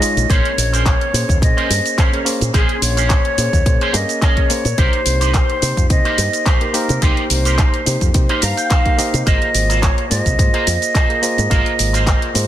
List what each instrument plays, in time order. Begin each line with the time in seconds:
Already playing: flute D#5
0.01 reed electric piano G#3 D#4 F4 C#5, muted fingered electric bass stroke, open hi-hat, shaker
0.17 fingered electric bass A#1, closed hi-hat, shaker
0.28 fingered electric bass A#1, reed electric piano A#3 C#4 G#4 A#4, clean electric guitar C#4 G#4 A#4 C5, flute C#5, kick, closed hi-hat, shaker
0.45 closed hi-hat
0.58 fingered electric bass A#1, open hi-hat, shaker
0.73 clean electric guitar C#4 G#4 A#4 C5, closed hi-hat, shaker
0.86 flute C#5, kick, clap, closed hi-hat, shaker
1.01 closed hi-hat
1.13 fingered electric bass A#2, reed electric piano A#3 C#4 G#4 C5, open hi-hat, shaker
1.29 fingered electric bass D#2, kick, closed hi-hat, shaker
1.41 fingered electric bass A#2, reed electric piano A#3 C#4 G#4 C5, flute D#5, muted clean electric guitar stroke, kick, closed hi-hat, shaker
1.57 clean electric guitar C#4 G#4 A#4 C5, closed hi-hat
1.70 fingered electric bass G2, open hi-hat, shaker
1.85 muted clean electric guitar stroke, closed hi-hat, shaker
1.97 clean electric guitar C#4 G#4 A#4 C#5, flute C5, kick, clap, closed hi-hat, shaker
2.12 reed electric piano A#3 C#4 G#4 A#4, closed hi-hat
2.25 reed electric piano A#3 C#4 G#4 C5, open hi-hat, shaker
2.41 fingered electric bass A#2, closed hi-hat, shaker
2.53 fingered electric bass A#1, reed electric piano A#3 C#4 G#4 C6, clean electric guitar C#4 G#4 A#4 C5, flute G#4, kick, closed hi-hat, shaker
2.69 closed hi-hat
2.82 fingered electric bass A#1, flute C#5, open hi-hat, shaker
2.97 clean electric guitar C#4 G#4 A#4 C5, closed hi-hat, shaker
3.10 kick, clap, closed hi-hat, shaker
3.25 closed hi-hat
3.38 fingered electric bass A#2, reed electric piano A#3 C#4 G#4 C5, open hi-hat, shaker
3.53 fingered electric bass D#2, kick, closed hi-hat, shaker
3.66 fingered electric bass A#2, reed electric piano A#3 C#4 G#4 C5, muted clean electric guitar stroke, kick, closed hi-hat, shaker
3.81 clean electric guitar C#4 G#4 A#4 C5, closed hi-hat
3.93 fingered electric bass G2, reed electric piano A#3 C#4 G#4 A#4, flute D#5, open hi-hat, shaker
4.09 muted clean electric guitar stroke, closed hi-hat, shaker
4.21 clean electric guitar C#4 G#4 A#4 D#5, flute C#5, kick, clap, closed hi-hat, shaker
4.37 kick, closed hi-hat
4.50 reed electric piano A#3 C#4 G#4 C5, muted fingered electric bass stroke, open hi-hat, shaker
4.65 fingered electric bass A#2, closed hi-hat, shaker
4.77 fingered electric bass C2, reed electric piano A#3 D#4 G4 C5, clean electric guitar D#4 G4 A#4 C5, flute C5, kick, closed hi-hat, shaker
4.93 closed hi-hat
5.06 fingered electric bass C2, open hi-hat, shaker
5.21 clean electric guitar D#4 G4 A#4 C5, closed hi-hat, shaker
5.34 flute C5, kick, clap, closed hi-hat, shaker
5.50 closed hi-hat
5.62 fingered electric bass C3, reed electric piano A#3 D#4 G4 C5, open hi-hat, shaker
5.77 fingered electric bass F2, kick, closed hi-hat, shaker
5.89 fingered electric bass C3, reed electric piano A#3 D#4 G4 C5, flute D#5, muted clean electric guitar stroke, kick, closed hi-hat, shaker
6.05 clean electric guitar D#4 G4 A#4 C5, closed hi-hat
6.18 fingered electric bass G2, open hi-hat, shaker
6.33 muted clean electric guitar stroke, closed hi-hat, shaker
6.46 clean electric guitar D#4 G4 A#4 C5, flute C5, kick, clap, closed hi-hat, shaker
6.61 reed electric piano A#3 D#4 G4 A#4, closed hi-hat
6.74 reed electric piano A#3 D#4 G4 C5, flute A#4, open hi-hat, shaker
6.89 fingered electric bass C3, closed hi-hat, shaker
7.01 fingered electric bass C2, reed electric piano A#3 D#4 G4 C5, clean electric guitar D#4 G4 A#4 C5, flute G4, kick, closed hi-hat, shaker
7.17 closed hi-hat
7.30 fingered electric bass C2, flute C5, open hi-hat, shaker
7.45 clean electric guitar D#4 G4 A#4 C5, closed hi-hat, shaker
7.58 kick, clap, closed hi-hat, shaker
7.74 closed hi-hat
7.86 fingered electric bass C3, reed electric piano A#3 D#4 G4 C5, open hi-hat, shaker
8.01 fingered electric bass F2, kick, closed hi-hat, shaker
8.13 fingered electric bass C3, reed electric piano A#3 D#4 G4 C5, muted clean electric guitar stroke, kick, closed hi-hat, shaker
8.29 clean electric guitar D#4 G4 A#4 C5, closed hi-hat
8.42 fingered electric bass G2, flute F5, clean electric guitar A#5, open hi-hat, shaker
8.57 clean electric guitar G5, muted clean electric guitar stroke, closed hi-hat, shaker
8.70 clean electric guitar D#4 G4 A#4 C5 F5, kick, clap, closed hi-hat, shaker
8.85 reed electric piano A#3 D#4 G4 A#4, kick, closed hi-hat
8.98 reed electric piano A#3 D#4 G4 C5, clean electric guitar D#5, muted fingered electric bass stroke, open hi-hat, shaker
9.14 fingered electric bass C3, closed hi-hat, shaker
9.26 fingered electric bass G#1, reed electric piano A#3 F4 G#4 C5, clean electric guitar F4 G#4 A#4 C5, flute D#5, kick, closed hi-hat, shaker
9.42 closed hi-hat
9.54 fingered electric bass G#1, open hi-hat, shaker
9.69 clean electric guitar F4 G#4 A#4 C5, closed hi-hat, shaker
9.82 flute C#5, kick, clap, closed hi-hat, shaker
9.98 closed hi-hat
10.09 fingered electric bass G#2, reed electric piano A#3 F4 G#4 C5, flute D#5, open hi-hat, shaker
10.26 fingered electric bass C2, kick, closed hi-hat, shaker
10.38 fingered electric bass G#2, reed electric piano A#3 F4 G#4 C5, muted clean electric guitar stroke, kick, closed hi-hat, shaker
10.53 clean electric guitar F4 G#4 A#4 C5, closed hi-hat
10.67 fingered electric bass F2, open hi-hat, shaker
10.82 muted clean electric guitar stroke, closed hi-hat, shaker
10.94 clean electric guitar F4 G#4 A#4 C5, kick, clap, closed hi-hat, shaker
11.09 reed electric piano A#3 F4 G#4 A#4, closed hi-hat
11.22 reed electric piano A#3 F4 G#4 C5, open hi-hat, shaker
11.38 fingered electric bass G#2, closed hi-hat, shaker
11.50 fingered electric bass G#1, reed electric piano A#3 F4 G#4 C5, clean electric guitar F4 G#4 A#4 C5, kick, closed hi-hat, shaker
11.66 closed hi-hat
11.79 fingered electric bass G#1, open hi-hat, shaker
11.93 clean electric guitar F4 G#4 A#4 C5, closed hi-hat, shaker
12.07 kick, clap, closed hi-hat, shaker
12.22 closed hi-hat
12.34 fingered electric bass G#2, reed electric piano A#3 F4 G#4 C5, open hi-hat, shaker